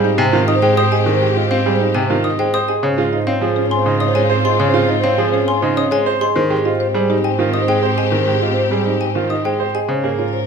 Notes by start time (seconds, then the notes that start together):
Already playing: G#2 C4 G4 C5
0.04 D#4 G4
0.18 C3 G5 G#5
0.23 C5
0.33 D#3 F4
0.48 D#4 D#5 D#6
0.54 C5
0.62 G#3 C5 G5
0.77 C5 D#6
0.84 C5
0.92 G#4 D#5 G#5
1.06 D#3 C5
1.14 C5
1.21 G#3 G4
1.36 F4 D#5
1.45 C5
1.51 C4 C5 F5
1.66 G3 G#4
1.75 C5
1.80 D#4 G4
1.95 C3 G5 G#5
2.07 D#3 F4 C5
2.24 D#4 D#5 D#6
2.38 G#3 C5 G5
2.54 C5 D#6
2.68 G#4 D#5 G#5
2.83 G#2 C#3 C4 F4 C5 C#5
2.98 G#3 F4
3.13 D#4 C5 D#5
3.27 C4 C#5 F5
3.41 F3 G#4 C5
3.56 C#4 G#4
3.71 G#5 C6
3.75 C5
3.86 C#3 D#4
4.00 C#4 D#5 D#6
4.07 C5
4.15 G#3 C#5 G#5
4.30 C5
4.37 C5
4.44 G#4 D#5 C6
4.60 C#3 C#5
4.67 C5
4.74 G#3 F4
4.88 D#4 D#5
4.98 C5
5.03 C4 C#5 F5
5.18 F3 G#4
5.29 C#4 C5
5.34 G#4
5.48 G#5 C6
5.60 C#3 D#4 C5
5.77 C#4 D#5 D#6
5.91 G#3 C5 C#5 G#5
6.06 C5
6.21 G#4 D#5 C6
6.35 G#2 D#3 C4 G4 C5
6.50 G#3 G4
6.65 F4 C5 D#5
6.80 C5
6.94 G3 G#4 C5
7.10 D#4 G4
7.24 G5 G#5
7.28 C5
7.39 D#3 F4
7.54 D#4 D#5 D#6
7.60 C5
7.68 G#3 C5 G5
7.83 C5
7.90 C5
7.97 G#4 D#5 G#5
8.12 D#3 C5
8.22 C5
8.27 G#3 G4
8.42 F4 D#5
8.52 C5
8.57 C5
8.71 G3 G#4
8.84 D#4 G4 C5
9.00 G5 G#5
9.13 D#3 F4 C5
9.30 D#4 D#5 D#6
9.44 G#3 C5 G5
9.60 C5
9.75 G#4 D#5 G#5
9.88 G#2 C#3 C#4 A#4 C5 C#5
10.04 A#3 G#4
10.19 F4 C#5
10.33 C5